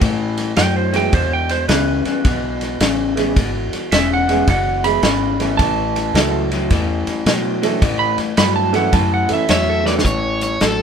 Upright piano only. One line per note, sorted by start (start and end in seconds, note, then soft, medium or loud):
0.93 1.11 E3 medium
0.93 1.11 G#3 medium
0.93 1.11 B3 medium
0.93 1.11 E4 medium
0.93 1.11 G#4 medium
1.69 2.02 E3 medium
1.69 2.02 G#3 medium
1.69 2.02 B3 medium
1.69 2.02 E4 medium
1.69 2.03 G#4 medium
3.15 3.33 E3 medium
3.15 3.34 G#3 medium
3.15 3.34 B3 medium
3.15 3.35 E4 medium
3.15 3.35 G#4 medium
4.28 4.45 E3 medium
4.28 4.45 G#3 medium
4.28 4.46 B3 medium
4.28 4.46 E4 medium
4.28 4.46 G#4 loud
4.84 5.01 E3 medium
4.84 5.02 G#3 medium
4.84 5.02 B3 medium
4.84 5.02 E4 medium
4.84 5.02 G#4 loud
5.40 6.11 E3 medium
5.40 6.11 A3 medium
5.40 6.11 C#4 medium
5.40 6.11 E4 medium
5.40 6.11 A4 medium
6.14 6.99 E3 medium
6.14 6.99 A3 medium
6.14 7.00 C#4 medium
6.14 7.00 E4 medium
6.14 7.00 A4 medium
7.62 7.80 E3 medium
7.62 7.80 A3 medium
7.62 7.80 C#4 medium
7.62 7.81 E4 medium
7.62 7.81 A4 loud
8.73 8.91 E3 loud
8.73 8.91 A3 medium
8.73 8.91 C#4 medium
8.73 8.91 E4 medium
8.73 8.91 A4 loud
9.29 9.47 E3 medium
9.29 9.47 A3 medium
9.29 9.47 C#4 medium
9.29 9.48 E4 medium
9.29 9.48 A4 medium
9.83 10.04 E3 medium
9.83 10.04 A3 medium
9.83 10.04 C#4 medium
9.83 10.05 E4 medium
9.83 10.05 B4 medium